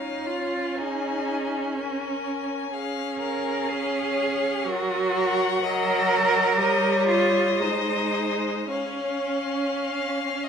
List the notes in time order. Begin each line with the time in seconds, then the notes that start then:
Already playing: C#4 C#5 F5
0.00 D#4
0.26 F4
0.77 D#4 G#4 G#5
1.77 C#4 A#4 G#5
2.72 C#4 G#4 F5
3.20 A#4 F5
3.69 G#4 C#5
4.66 F#3 F#4 A#4 F#5
5.15 A#4
5.61 F#3 A#4 D#5
6.57 G3 C#5 D#5
7.08 F4 D#5
7.60 G#3 D#4 C5
8.69 C#4 C#5 F5
9.85 F5
10.43 D#5